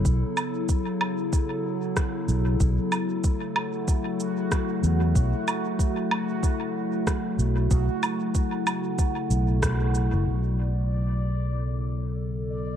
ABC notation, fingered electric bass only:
X:1
M:4/4
L:1/16
Q:"Swing 16ths" 1/4=94
K:Bm
V:1 name="Fingered electric bass" clef=bass
B,,, z12 z B,,,2 | B,,, z12 z E,,2 | B,,, z12 z B,,,2 | B,,, z8 z B,,,4- B,,, F,,, |
B,,,16 |]